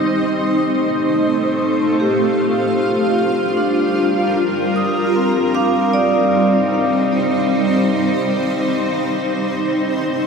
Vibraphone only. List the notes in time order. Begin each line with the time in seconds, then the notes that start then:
0.41 D#4
2.00 G4
3.57 D4
4.76 D#6
5.16 C4
5.55 F5 D6
5.93 D5